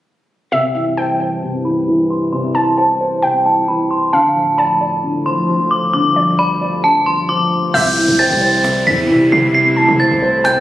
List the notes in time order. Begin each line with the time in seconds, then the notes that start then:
0.52 C2 G2 C3 E3 E5 G5
0.75 E3
0.97 C5 G5 A5
1.20 C5
1.43 C3
1.65 E3 B5
1.88 E3
2.10 C6
2.32 C3 C6
2.55 E3 A5
2.78 C5 A5
3.01 C5
3.22 C3 G5
3.45 E3 A5
3.68 E3 B5
3.91 C6
4.13 D2 A2 D3 F3 F5 A5
4.36 F3
4.58 D5 A5 B5
4.81 D5
5.04 D3
5.26 F3 C6
5.49 F3
5.71 D6
5.93 G2 D3 D6
6.16 F3 D5
6.39 D5 B5
6.61 D5
6.84 D3 A5
7.06 F3 C6
7.29 F3 D6
7.74 C2 C3 G3 E4 E5 G6, cajon slap, downlifter
7.97 E3, cajon slap
8.08 C2
8.19 C5 G5 A6, cajon slap
8.30 C2
8.42 C5
8.64 C3, cajon slap
8.87 E2 E3 B6, cajon slap
8.98 cajon slap
9.09 C3 E3, cajon slap
9.21 cajon slap
9.32 C3 C7, cajon slap
9.54 C3 A3 C7, cajon slap
9.66 cajon slap
9.76 E3 A5, cajon slap
9.88 C3, cajon slap
10.00 C5 A6, cajon slap
10.11 C2, cajon slap
10.22 C5
10.44 C3 G5 G6, cajon slap
10.56 G2